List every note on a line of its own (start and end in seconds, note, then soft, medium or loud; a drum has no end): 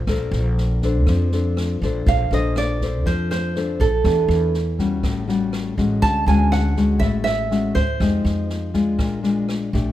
0.00 1.54 C5 medium
0.07 0.31 A#1 medium
0.07 1.05 A#3 medium
0.07 0.79 D4 medium
0.07 0.79 A4 medium
0.07 0.79 C5 medium
0.07 kick medium
0.07 cross-stick medium
0.07 snare soft
0.31 1.07 A#1 loud
0.31 snare soft
0.58 snare soft
0.82 1.28 D4 medium
0.82 1.29 A4 medium
0.82 1.29 C5 medium
0.82 kick soft
0.82 snare soft
1.07 1.77 F2 loud
1.07 2.05 F3 medium
1.07 kick medium
1.07 cross-stick medium
1.07 snare soft
1.32 1.78 D4 medium
1.32 1.78 A4 medium
1.32 1.78 C5 medium
1.32 snare soft
1.57 cross-stick medium
1.57 snare soft
1.82 2.05 A#1 medium
1.82 2.28 D4 medium
1.82 2.28 A4 medium
1.82 2.28 C5 medium
1.82 kick soft
1.82 snare soft
2.06 2.30 A#1 medium
2.06 3.03 A#3 medium
2.06 2.33 F5 medium
2.06 kick medium
2.06 snare soft
2.31 3.06 A#1 medium
2.31 2.77 D4 medium
2.31 2.77 A4 medium
2.31 2.77 C5 medium
2.31 2.57 D#5 medium
2.31 snare soft
2.56 3.08 D5 medium
2.56 cross-stick medium
2.56 snare soft
2.81 3.52 D4 medium
2.81 3.52 A4 medium
2.81 3.52 C5 medium
2.81 kick soft
2.81 snare soft
3.06 3.76 F2 medium
3.06 4.02 F3 medium
3.06 3.30 C5 medium
3.06 kick medium
3.06 snare soft
3.31 3.80 C5 medium
3.31 cross-stick medium
3.31 snare soft
3.56 3.87 D4 medium
3.56 3.88 A4 medium
3.56 3.88 C5 medium
3.56 snare soft
3.80 4.03 A#1 medium
3.80 4.51 A4 medium
3.80 kick soft
3.80 snare soft
4.04 4.28 E2 loud
4.04 5.01 E3 medium
4.04 4.54 B3 medium
4.04 4.54 D4 medium
4.04 4.54 G4 medium
4.04 kick medium
4.04 cross-stick medium
4.04 snare soft
4.28 5.03 E2 loud
4.28 snare soft
4.54 snare soft
4.79 5.24 G3 medium
4.79 5.25 C#4 medium
4.79 5.25 F#4 medium
4.79 kick soft
4.79 snare soft
5.03 5.74 A1 medium
5.03 6.00 A2 medium
5.03 kick medium
5.03 cross-stick medium
5.03 snare soft
5.28 5.73 G3 medium
5.28 5.74 C#4 medium
5.28 5.74 F#4 medium
5.28 snare soft
5.53 cross-stick medium
5.53 snare soft
5.78 6.01 A1 medium
5.78 6.23 G#3 medium
5.78 6.23 C#4 medium
5.78 6.24 F#4 medium
5.78 kick soft
5.78 snare soft
6.02 6.25 D2 medium
6.02 6.99 D3 medium
6.02 6.27 A5 loud
6.02 kick medium
6.02 snare soft
6.26 7.01 D2 medium
6.26 6.73 G#3 medium
6.26 6.73 C#4 medium
6.26 6.74 F#4 medium
6.26 6.51 G#5 medium
6.26 snare soft
6.52 6.99 F#5 medium
6.52 cross-stick medium
6.52 snare soft
6.76 7.47 G#3 medium
6.76 7.47 C#4 medium
6.76 7.47 F#4 medium
6.76 kick soft
6.76 snare soft
6.99 7.71 A1 medium
6.99 7.98 A2 medium
6.99 7.06 E5 loud
6.99 kick medium
6.99 snare soft
7.24 7.76 E5 medium
7.24 cross-stick medium
7.24 snare soft
7.51 7.83 G#3 medium
7.51 7.83 C#4 medium
7.51 7.83 F#4 medium
7.51 snare soft
7.75 7.98 D2 medium
7.75 8.45 C5 medium
7.75 kick soft
7.75 snare soft
8.00 8.23 F2 medium
8.00 8.97 F3 medium
8.00 8.71 G#3 medium
8.00 8.71 D#4 medium
8.00 8.71 G4 medium
8.00 kick medium
8.00 cross-stick medium
8.00 snare soft
8.25 8.99 F2 medium
8.25 snare soft
8.50 snare soft
8.74 9.20 G#3 medium
8.74 9.20 D4 medium
8.74 9.20 F4 medium
8.74 kick soft
8.74 snare soft
8.98 9.69 A#1 medium
8.98 9.92 A#2 medium
8.98 kick medium
8.98 cross-stick medium
8.98 snare soft
9.23 9.69 G#3 medium
9.23 9.69 D4 medium
9.23 9.69 F4 medium
9.23 snare soft
9.48 cross-stick medium
9.48 snare soft
9.73 9.92 A#1 medium
9.73 9.92 A3 medium
9.73 9.92 D4 medium
9.73 9.92 G4 medium
9.73 kick soft
9.73 snare soft